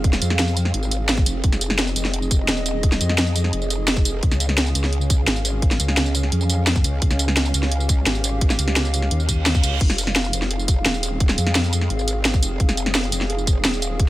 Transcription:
Already playing: wobble bass D#1, analog synth pad C4 G#4 F5
0.04 kick, closed hi-hat
0.13 snare, tambourine
0.22 wobble bass F2, closed hi-hat, tambourine
0.30 snare
0.39 snare, closed hi-hat
0.48 tambourine
0.57 open hi-hat, tambourine
0.65 snare
0.74 wobble bass G#1, closed hi-hat
0.83 tambourine
0.91 closed hi-hat, tambourine
1.09 snare, closed hi-hat
1.18 kick, tambourine
1.26 wobble bass F1, closed hi-hat, tambourine
1.44 wobble bass F1, analog synth pad D#5, kick, closed hi-hat
1.52 snare, tambourine
1.61 closed hi-hat, tambourine
1.70 snare
1.79 snare, closed hi-hat
1.87 tambourine
1.96 wobble bass F1, closed hi-hat, tambourine
2.05 snare
2.14 closed hi-hat
2.22 tambourine
2.31 kick, closed hi-hat, tambourine
2.48 wobble bass D#1, snare, closed hi-hat
2.57 tambourine
2.66 closed hi-hat, tambourine
2.83 kick, closed hi-hat
2.92 snare, tambourine
3.01 wobble bass F2, closed hi-hat, tambourine
3.09 snare
3.18 snare, closed hi-hat
3.27 tambourine
3.36 open hi-hat, tambourine
3.44 snare
3.53 wobble bass F1, closed hi-hat
3.62 tambourine
3.70 closed hi-hat, tambourine
3.88 snare, closed hi-hat
3.97 kick, tambourine
4.05 closed hi-hat, tambourine
4.23 wobble bass C#2, analog synth pad C#4 F5, kick, closed hi-hat
4.31 snare, tambourine
4.40 closed hi-hat, tambourine
4.49 snare
4.58 snare, closed hi-hat
4.66 tambourine
4.75 wobble bass C#2, closed hi-hat, tambourine
4.84 snare
4.93 closed hi-hat
5.01 tambourine
5.10 kick, closed hi-hat, tambourine
5.27 wobble bass G#1, snare, closed hi-hat
5.36 tambourine
5.45 closed hi-hat, tambourine
5.62 kick, closed hi-hat
5.71 snare, tambourine
5.80 wobble bass C#2, closed hi-hat, tambourine
5.88 snare
5.97 snare, closed hi-hat
6.06 tambourine
6.15 open hi-hat, tambourine
6.23 snare
6.32 wobble bass F2, closed hi-hat
6.41 tambourine
6.50 closed hi-hat, tambourine
6.67 snare, closed hi-hat
6.76 kick, tambourine
6.84 wobble bass C#2, closed hi-hat, tambourine
7.02 wobble bass C#2, analog synth pad G4, kick, closed hi-hat
7.11 snare, tambourine
7.19 closed hi-hat, tambourine
7.28 snare
7.37 snare, closed hi-hat
7.45 tambourine
7.54 wobble bass C#2, closed hi-hat, tambourine
7.63 snare
7.72 closed hi-hat
7.80 tambourine
7.89 kick, closed hi-hat, tambourine
8.06 wobble bass G#1, snare, closed hi-hat
8.15 tambourine
8.24 closed hi-hat, tambourine
8.41 kick, closed hi-hat
8.50 snare, tambourine
8.59 wobble bass C#2, closed hi-hat, tambourine
8.68 snare
8.76 snare, closed hi-hat
8.85 tambourine
8.94 open hi-hat, tambourine
9.02 snare
9.11 wobble bass D#2, closed hi-hat, reverse cymbal
9.20 tambourine
9.29 kick, closed hi-hat, tambourine
9.46 snare, closed hi-hat
9.55 kick, tambourine
9.63 wobble bass C#2, closed hi-hat, tambourine
9.81 wobble bass F1, analog synth pad C4 G#4, kick, closed hi-hat, crash
9.90 snare, tambourine
9.98 closed hi-hat, tambourine
10.07 snare
10.16 snare, closed hi-hat
10.24 tambourine
10.33 wobble bass F1, closed hi-hat, tambourine
10.42 snare
10.51 closed hi-hat
10.59 tambourine
10.68 kick, closed hi-hat, tambourine
10.86 wobble bass D#1, snare, closed hi-hat
10.94 tambourine
11.03 closed hi-hat, tambourine
11.20 kick, closed hi-hat
11.29 snare, tambourine
11.38 wobble bass F2, closed hi-hat, tambourine
11.47 snare
11.55 snare, closed hi-hat
11.64 tambourine
11.73 open hi-hat, tambourine
11.81 snare
11.90 wobble bass G#1, closed hi-hat
11.99 tambourine
12.08 closed hi-hat, tambourine
12.25 snare, closed hi-hat
12.34 kick, tambourine
12.42 wobble bass F1, closed hi-hat, tambourine
12.60 wobble bass F1, kick, closed hi-hat
12.69 snare, tambourine
12.77 closed hi-hat, tambourine
12.86 snare
12.95 snare, closed hi-hat
13.04 tambourine
13.12 wobble bass F1, closed hi-hat, tambourine
13.21 snare
13.30 closed hi-hat
13.38 tambourine
13.47 kick, closed hi-hat, tambourine
13.65 wobble bass D#1, snare, closed hi-hat
13.73 tambourine
13.82 closed hi-hat, tambourine
14.00 kick, closed hi-hat

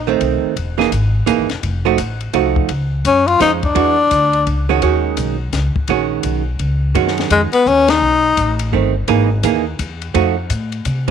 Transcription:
Already playing: upright bass A#1
0.07 hollow-body jazz guitar D#3 A3 C4
0.21 upright bass B1, kick, ride
0.43 muted upright bass stroke
0.56 upright bass E1, kick, ride
0.78 hollow-body jazz guitar E3 A#3 D#4 G#4, snare
0.92 upright bass G#1, kick, hi-hat pedal, ride
1.26 upright bass A#1, hollow-body jazz guitar E3 A#3 D#4 G#4, kick, hi-hat pedal, ride
1.38 upright bass G#1
1.49 upright bass E1, snare, ride
1.63 upright bass F1, kick, ride
1.85 hollow-body jazz guitar F3 A3 D#4 F#4
1.98 upright bass A1, kick, hi-hat pedal, ride
2.20 ride
2.33 upright bass C2, hollow-body jazz guitar F3 A3 D#4 F#4, kick, ride
2.56 kick
2.69 upright bass C#2, kick, ride
3.05 upright bass F#2, tenor saxophone C#4, kick, hi-hat pedal, ride
3.27 tenor saxophone F4, ride
3.40 upright bass F2, hollow-body jazz guitar F3 G#3 C#4, tenor saxophone D#4, kick, snare, hi-hat pedal, ride
3.63 tenor saxophone D4, kick, ride
3.75 upright bass E2, hollow-body jazz guitar E3 G#3 D4 F#4, kick, ride
4.11 upright bass D2, kick, hi-hat pedal, ride
4.33 ride
4.47 upright bass C#2, kick, ride
4.69 hollow-body jazz guitar D#3 G#3 C#4 F#4
4.82 upright bass D#2, hollow-body jazz guitar D#3 G#3 C#4 F#4, kick, ride
5.17 upright bass B1, kick, hi-hat pedal, ride
5.53 upright bass C#2, kick, snare, hi-hat pedal, ride
5.75 muted upright bass stroke, kick
5.88 upright bass A#1, hollow-body jazz guitar D#3 G#3 C#4 F#4, kick, ride
6.23 upright bass B1, kick, hi-hat pedal, ride
6.59 upright bass C#2, kick, ride
6.95 upright bass F#2, hollow-body jazz guitar D#3 G#3 C#4 F#4, kick, ride
7.08 snare
7.18 snare, ride
7.30 upright bass F2, tenor saxophone G#3, kick, hi-hat pedal, ride
7.52 tenor saxophone B3, muted upright bass stroke, ride
7.66 upright bass D#2, tenor saxophone C#4, kick, hi-hat pedal
7.88 tenor saxophone D#4, snare, ride
8.02 upright bass B1
8.37 upright bass A1, kick, hi-hat pedal, ride
8.59 ride
8.72 upright bass G1, hollow-body jazz guitar D#3 A3 C4, kick
9.08 upright bass G#1, hollow-body jazz guitar E3 A#3 D#4 G#4, kick, ride
9.43 upright bass D#2, hollow-body jazz guitar E3 A#3 D#4 G#4, kick, hi-hat pedal, ride
9.79 upright bass E2, kick, hi-hat pedal, ride
10.02 ride
10.14 upright bass F2, hollow-body jazz guitar F3 A3 D#4 F#4, kick, ride
10.50 upright bass A2, kick, hi-hat pedal, ride
10.72 ride
10.85 upright bass C3, kick, hi-hat pedal, ride

